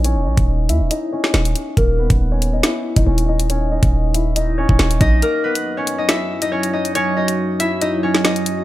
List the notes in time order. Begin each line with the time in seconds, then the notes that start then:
Already playing: A#1 B3 D#4 B4 D#5
0.04 C#4 C#5, closed hi-hat
0.16 E1
0.26 A#1 D#4 D#5
0.37 D#1, kick, closed hi-hat
0.69 D#2 E4 E5, closed hi-hat
0.81 D#1
0.91 D#4 D#5, closed hi-hat
1.12 C#4 C#5
1.24 snare
1.34 D#1 D#4 D#5, snare
1.45 closed hi-hat
1.56 closed hi-hat
1.77 D#1 A#3 A#4, kick, closed hi-hat
1.99 B3 B4
2.10 D#1, kick, closed hi-hat
2.32 C#4 C#5
2.42 closed hi-hat
2.53 D#4 D#5
2.63 E4 E5, snare, closed hi-hat
2.96 D#1 D#4 D#5, kick, closed hi-hat
3.07 D#1 C#4 C#5
3.18 closed hi-hat
3.28 D#4 D#5
3.40 closed hi-hat
3.50 C#4 C#5, closed hi-hat
3.72 D#4 D#5
3.83 D#1, kick, closed hi-hat
4.14 E4 E5, closed hi-hat
4.36 D#4 D#5, closed hi-hat
4.58 C#4 C#5
4.69 D#1, kick
4.79 D#1, snare
4.91 closed hi-hat
5.01 A#1 D#4 D#5, kick, closed hi-hat
5.22 F#3 A#3 F#4 A#4, closed hi-hat
5.44 B3 B4
5.55 closed hi-hat
5.77 C#4 C#5
5.87 closed hi-hat
5.98 D#4 D#5
6.09 E4 E5, snare, closed hi-hat
6.42 D#4 D#5, closed hi-hat
6.52 C#4 C#5
6.63 closed hi-hat
6.73 D#4 D#5
6.85 closed hi-hat
6.95 C#4 C#5, closed hi-hat
7.17 D#4 D#5
7.28 closed hi-hat
7.60 E4 E5, closed hi-hat
7.81 D#4 D#5, closed hi-hat
8.03 C#4 C#5
8.15 snare
8.24 D#4 D#5, snare
8.36 closed hi-hat
8.46 closed hi-hat